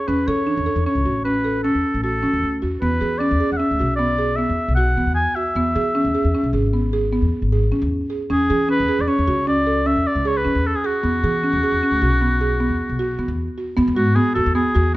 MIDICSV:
0, 0, Header, 1, 4, 480
1, 0, Start_track
1, 0, Tempo, 391389
1, 94, Time_signature, 7, 2, 24, 8
1, 18354, End_track
2, 0, Start_track
2, 0, Title_t, "Oboe"
2, 0, Program_c, 0, 68
2, 99, Note_on_c, 0, 71, 57
2, 338, Note_on_c, 0, 73, 69
2, 356, Note_off_c, 0, 71, 0
2, 1046, Note_off_c, 0, 73, 0
2, 1054, Note_on_c, 0, 73, 52
2, 1500, Note_off_c, 0, 73, 0
2, 1526, Note_on_c, 0, 71, 57
2, 1976, Note_off_c, 0, 71, 0
2, 2001, Note_on_c, 0, 69, 55
2, 2453, Note_off_c, 0, 69, 0
2, 2483, Note_on_c, 0, 69, 54
2, 3159, Note_off_c, 0, 69, 0
2, 3449, Note_on_c, 0, 71, 63
2, 3906, Note_on_c, 0, 74, 74
2, 3924, Note_off_c, 0, 71, 0
2, 4313, Note_off_c, 0, 74, 0
2, 4324, Note_on_c, 0, 78, 48
2, 4379, Note_on_c, 0, 76, 60
2, 4398, Note_off_c, 0, 78, 0
2, 4851, Note_off_c, 0, 76, 0
2, 4858, Note_on_c, 0, 74, 66
2, 5349, Note_on_c, 0, 76, 72
2, 5367, Note_off_c, 0, 74, 0
2, 5824, Note_off_c, 0, 76, 0
2, 5831, Note_on_c, 0, 78, 68
2, 6287, Note_off_c, 0, 78, 0
2, 6315, Note_on_c, 0, 80, 69
2, 6567, Note_on_c, 0, 76, 71
2, 6585, Note_off_c, 0, 80, 0
2, 8010, Note_off_c, 0, 76, 0
2, 10197, Note_on_c, 0, 68, 63
2, 10633, Note_off_c, 0, 68, 0
2, 10677, Note_on_c, 0, 71, 73
2, 11052, Note_on_c, 0, 74, 48
2, 11070, Note_off_c, 0, 71, 0
2, 11135, Note_on_c, 0, 73, 68
2, 11153, Note_off_c, 0, 74, 0
2, 11615, Note_off_c, 0, 73, 0
2, 11625, Note_on_c, 0, 74, 71
2, 12102, Note_on_c, 0, 76, 76
2, 12120, Note_off_c, 0, 74, 0
2, 12350, Note_on_c, 0, 74, 65
2, 12368, Note_off_c, 0, 76, 0
2, 12595, Note_on_c, 0, 73, 68
2, 12613, Note_off_c, 0, 74, 0
2, 12720, Note_on_c, 0, 71, 65
2, 12738, Note_off_c, 0, 73, 0
2, 13079, Note_on_c, 0, 69, 66
2, 13097, Note_off_c, 0, 71, 0
2, 13193, Note_on_c, 0, 68, 57
2, 13211, Note_off_c, 0, 69, 0
2, 13318, Note_on_c, 0, 66, 74
2, 13336, Note_off_c, 0, 68, 0
2, 16426, Note_off_c, 0, 66, 0
2, 17126, Note_on_c, 0, 66, 66
2, 17358, Note_on_c, 0, 68, 72
2, 17376, Note_off_c, 0, 66, 0
2, 17589, Note_off_c, 0, 68, 0
2, 17596, Note_on_c, 0, 69, 68
2, 17826, Note_off_c, 0, 69, 0
2, 17841, Note_on_c, 0, 68, 60
2, 18291, Note_off_c, 0, 68, 0
2, 18354, End_track
3, 0, Start_track
3, 0, Title_t, "Marimba"
3, 0, Program_c, 1, 12
3, 98, Note_on_c, 1, 61, 60
3, 238, Note_off_c, 1, 61, 0
3, 341, Note_on_c, 1, 69, 57
3, 480, Note_off_c, 1, 69, 0
3, 573, Note_on_c, 1, 62, 55
3, 714, Note_off_c, 1, 62, 0
3, 812, Note_on_c, 1, 69, 54
3, 954, Note_off_c, 1, 69, 0
3, 1060, Note_on_c, 1, 61, 49
3, 1199, Note_off_c, 1, 61, 0
3, 1294, Note_on_c, 1, 66, 45
3, 1435, Note_off_c, 1, 66, 0
3, 1535, Note_on_c, 1, 61, 53
3, 1675, Note_off_c, 1, 61, 0
3, 1771, Note_on_c, 1, 69, 51
3, 1913, Note_off_c, 1, 69, 0
3, 2016, Note_on_c, 1, 61, 56
3, 2297, Note_off_c, 1, 61, 0
3, 2498, Note_on_c, 1, 66, 47
3, 2637, Note_off_c, 1, 66, 0
3, 2732, Note_on_c, 1, 61, 52
3, 3014, Note_off_c, 1, 61, 0
3, 3215, Note_on_c, 1, 66, 49
3, 3355, Note_off_c, 1, 66, 0
3, 3458, Note_on_c, 1, 59, 60
3, 3597, Note_off_c, 1, 59, 0
3, 3689, Note_on_c, 1, 68, 49
3, 3831, Note_off_c, 1, 68, 0
3, 3930, Note_on_c, 1, 61, 55
3, 4072, Note_off_c, 1, 61, 0
3, 4171, Note_on_c, 1, 68, 49
3, 4312, Note_off_c, 1, 68, 0
3, 4410, Note_on_c, 1, 61, 49
3, 4551, Note_off_c, 1, 61, 0
3, 4653, Note_on_c, 1, 66, 44
3, 4794, Note_off_c, 1, 66, 0
3, 4894, Note_on_c, 1, 59, 55
3, 5034, Note_off_c, 1, 59, 0
3, 5131, Note_on_c, 1, 68, 54
3, 5273, Note_off_c, 1, 68, 0
3, 5374, Note_on_c, 1, 59, 52
3, 5655, Note_off_c, 1, 59, 0
3, 5852, Note_on_c, 1, 66, 54
3, 5993, Note_off_c, 1, 66, 0
3, 6100, Note_on_c, 1, 59, 50
3, 6379, Note_off_c, 1, 59, 0
3, 6579, Note_on_c, 1, 66, 43
3, 6718, Note_off_c, 1, 66, 0
3, 6823, Note_on_c, 1, 59, 60
3, 6961, Note_off_c, 1, 59, 0
3, 7058, Note_on_c, 1, 68, 58
3, 7197, Note_off_c, 1, 68, 0
3, 7297, Note_on_c, 1, 61, 57
3, 7436, Note_off_c, 1, 61, 0
3, 7536, Note_on_c, 1, 68, 54
3, 7676, Note_off_c, 1, 68, 0
3, 7783, Note_on_c, 1, 61, 54
3, 7921, Note_off_c, 1, 61, 0
3, 8022, Note_on_c, 1, 68, 49
3, 8160, Note_off_c, 1, 68, 0
3, 8259, Note_on_c, 1, 59, 50
3, 8398, Note_off_c, 1, 59, 0
3, 8499, Note_on_c, 1, 68, 59
3, 8638, Note_off_c, 1, 68, 0
3, 8739, Note_on_c, 1, 59, 59
3, 9019, Note_off_c, 1, 59, 0
3, 9227, Note_on_c, 1, 68, 52
3, 9364, Note_off_c, 1, 68, 0
3, 9465, Note_on_c, 1, 61, 51
3, 9744, Note_off_c, 1, 61, 0
3, 9932, Note_on_c, 1, 68, 48
3, 10073, Note_off_c, 1, 68, 0
3, 10180, Note_on_c, 1, 61, 64
3, 10319, Note_off_c, 1, 61, 0
3, 10423, Note_on_c, 1, 68, 57
3, 10561, Note_off_c, 1, 68, 0
3, 10653, Note_on_c, 1, 61, 55
3, 10794, Note_off_c, 1, 61, 0
3, 10896, Note_on_c, 1, 68, 57
3, 11036, Note_off_c, 1, 68, 0
3, 11131, Note_on_c, 1, 61, 49
3, 11273, Note_off_c, 1, 61, 0
3, 11376, Note_on_c, 1, 66, 55
3, 11516, Note_off_c, 1, 66, 0
3, 11616, Note_on_c, 1, 61, 57
3, 11756, Note_off_c, 1, 61, 0
3, 11854, Note_on_c, 1, 69, 55
3, 11995, Note_off_c, 1, 69, 0
3, 12093, Note_on_c, 1, 61, 54
3, 12375, Note_off_c, 1, 61, 0
3, 12574, Note_on_c, 1, 68, 61
3, 12715, Note_off_c, 1, 68, 0
3, 12809, Note_on_c, 1, 61, 48
3, 13093, Note_off_c, 1, 61, 0
3, 13298, Note_on_c, 1, 68, 53
3, 13438, Note_off_c, 1, 68, 0
3, 13530, Note_on_c, 1, 59, 58
3, 13673, Note_off_c, 1, 59, 0
3, 13782, Note_on_c, 1, 68, 52
3, 13921, Note_off_c, 1, 68, 0
3, 14023, Note_on_c, 1, 61, 51
3, 14162, Note_off_c, 1, 61, 0
3, 14265, Note_on_c, 1, 68, 54
3, 14403, Note_off_c, 1, 68, 0
3, 14508, Note_on_c, 1, 61, 52
3, 14645, Note_off_c, 1, 61, 0
3, 14738, Note_on_c, 1, 66, 55
3, 14878, Note_off_c, 1, 66, 0
3, 14979, Note_on_c, 1, 59, 55
3, 15119, Note_off_c, 1, 59, 0
3, 15219, Note_on_c, 1, 68, 54
3, 15359, Note_off_c, 1, 68, 0
3, 15454, Note_on_c, 1, 59, 57
3, 15736, Note_off_c, 1, 59, 0
3, 15934, Note_on_c, 1, 66, 59
3, 16075, Note_off_c, 1, 66, 0
3, 16172, Note_on_c, 1, 59, 46
3, 16454, Note_off_c, 1, 59, 0
3, 16651, Note_on_c, 1, 66, 43
3, 16792, Note_off_c, 1, 66, 0
3, 16883, Note_on_c, 1, 59, 77
3, 17027, Note_off_c, 1, 59, 0
3, 17126, Note_on_c, 1, 66, 65
3, 17269, Note_off_c, 1, 66, 0
3, 17364, Note_on_c, 1, 59, 67
3, 17507, Note_off_c, 1, 59, 0
3, 17604, Note_on_c, 1, 66, 61
3, 17747, Note_off_c, 1, 66, 0
3, 17847, Note_on_c, 1, 59, 58
3, 17989, Note_off_c, 1, 59, 0
3, 18084, Note_on_c, 1, 66, 56
3, 18227, Note_off_c, 1, 66, 0
3, 18354, End_track
4, 0, Start_track
4, 0, Title_t, "Upright bass"
4, 0, Program_c, 2, 32
4, 103, Note_on_c, 2, 40, 67
4, 324, Note_off_c, 2, 40, 0
4, 338, Note_on_c, 2, 52, 69
4, 701, Note_on_c, 2, 40, 63
4, 719, Note_off_c, 2, 52, 0
4, 810, Note_off_c, 2, 40, 0
4, 928, Note_on_c, 2, 40, 60
4, 1043, Note_off_c, 2, 40, 0
4, 1168, Note_on_c, 2, 37, 55
4, 1283, Note_off_c, 2, 37, 0
4, 1297, Note_on_c, 2, 33, 54
4, 2086, Note_off_c, 2, 33, 0
4, 2141, Note_on_c, 2, 40, 52
4, 2250, Note_off_c, 2, 40, 0
4, 2381, Note_on_c, 2, 33, 55
4, 2715, Note_off_c, 2, 33, 0
4, 2743, Note_on_c, 2, 52, 49
4, 2861, Note_on_c, 2, 40, 58
4, 2879, Note_off_c, 2, 52, 0
4, 2970, Note_off_c, 2, 40, 0
4, 2979, Note_on_c, 2, 38, 49
4, 3192, Note_off_c, 2, 38, 0
4, 3223, Note_on_c, 2, 40, 51
4, 3434, Note_off_c, 2, 40, 0
4, 3460, Note_on_c, 2, 40, 67
4, 3682, Note_off_c, 2, 40, 0
4, 3699, Note_on_c, 2, 52, 63
4, 4059, Note_on_c, 2, 40, 62
4, 4077, Note_off_c, 2, 52, 0
4, 4168, Note_off_c, 2, 40, 0
4, 4314, Note_on_c, 2, 40, 58
4, 4416, Note_off_c, 2, 40, 0
4, 4550, Note_on_c, 2, 38, 57
4, 4654, Note_off_c, 2, 38, 0
4, 4669, Note_on_c, 2, 35, 62
4, 5451, Note_off_c, 2, 35, 0
4, 5511, Note_on_c, 2, 40, 57
4, 5614, Note_off_c, 2, 40, 0
4, 5743, Note_on_c, 2, 35, 61
4, 6075, Note_off_c, 2, 35, 0
4, 6100, Note_on_c, 2, 52, 52
4, 6211, Note_on_c, 2, 40, 54
4, 6229, Note_off_c, 2, 52, 0
4, 6437, Note_off_c, 2, 40, 0
4, 6810, Note_on_c, 2, 40, 68
4, 7036, Note_off_c, 2, 40, 0
4, 7057, Note_on_c, 2, 52, 69
4, 7414, Note_on_c, 2, 40, 59
4, 7433, Note_off_c, 2, 52, 0
4, 7526, Note_off_c, 2, 40, 0
4, 7656, Note_on_c, 2, 40, 59
4, 7767, Note_off_c, 2, 40, 0
4, 7891, Note_on_c, 2, 35, 56
4, 8000, Note_off_c, 2, 35, 0
4, 8007, Note_on_c, 2, 32, 61
4, 8801, Note_off_c, 2, 32, 0
4, 8852, Note_on_c, 2, 40, 54
4, 8965, Note_off_c, 2, 40, 0
4, 9100, Note_on_c, 2, 32, 54
4, 9434, Note_off_c, 2, 32, 0
4, 9458, Note_on_c, 2, 52, 55
4, 9586, Note_on_c, 2, 40, 68
4, 9605, Note_off_c, 2, 52, 0
4, 9805, Note_off_c, 2, 40, 0
4, 10179, Note_on_c, 2, 40, 63
4, 10401, Note_off_c, 2, 40, 0
4, 10426, Note_on_c, 2, 52, 71
4, 10785, Note_on_c, 2, 40, 61
4, 10803, Note_off_c, 2, 52, 0
4, 10892, Note_off_c, 2, 40, 0
4, 11023, Note_on_c, 2, 40, 53
4, 11131, Note_off_c, 2, 40, 0
4, 11263, Note_on_c, 2, 40, 54
4, 11366, Note_off_c, 2, 40, 0
4, 11373, Note_on_c, 2, 37, 57
4, 12165, Note_off_c, 2, 37, 0
4, 12213, Note_on_c, 2, 40, 52
4, 12326, Note_off_c, 2, 40, 0
4, 12451, Note_on_c, 2, 37, 61
4, 12791, Note_off_c, 2, 37, 0
4, 12821, Note_on_c, 2, 52, 58
4, 12938, Note_on_c, 2, 40, 56
4, 12956, Note_off_c, 2, 52, 0
4, 13161, Note_off_c, 2, 40, 0
4, 13533, Note_on_c, 2, 40, 62
4, 13759, Note_off_c, 2, 40, 0
4, 13777, Note_on_c, 2, 52, 65
4, 14137, Note_on_c, 2, 40, 64
4, 14156, Note_off_c, 2, 52, 0
4, 14249, Note_off_c, 2, 40, 0
4, 14371, Note_on_c, 2, 40, 51
4, 14486, Note_off_c, 2, 40, 0
4, 14607, Note_on_c, 2, 38, 51
4, 14724, Note_off_c, 2, 38, 0
4, 14739, Note_on_c, 2, 35, 62
4, 15527, Note_off_c, 2, 35, 0
4, 15571, Note_on_c, 2, 40, 51
4, 15685, Note_off_c, 2, 40, 0
4, 15812, Note_on_c, 2, 35, 57
4, 16150, Note_off_c, 2, 35, 0
4, 16168, Note_on_c, 2, 52, 59
4, 16288, Note_on_c, 2, 40, 64
4, 16306, Note_off_c, 2, 52, 0
4, 16516, Note_off_c, 2, 40, 0
4, 16890, Note_on_c, 2, 40, 77
4, 17004, Note_off_c, 2, 40, 0
4, 17017, Note_on_c, 2, 40, 73
4, 17130, Note_off_c, 2, 40, 0
4, 17130, Note_on_c, 2, 44, 79
4, 17356, Note_off_c, 2, 44, 0
4, 17612, Note_on_c, 2, 40, 63
4, 17724, Note_off_c, 2, 40, 0
4, 17734, Note_on_c, 2, 40, 67
4, 17958, Note_off_c, 2, 40, 0
4, 18093, Note_on_c, 2, 40, 76
4, 18354, Note_off_c, 2, 40, 0
4, 18354, End_track
0, 0, End_of_file